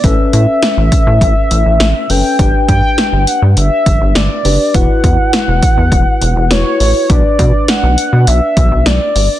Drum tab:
HH |xxxxxxxo|xxxxxxxo|xxxxxxxo|xxxxxxxo|
SD |--o---o-|--o---o-|--o---o-|--o---o-|
BD |o--oo---|oo---o--|oo-oo---|oo---o--|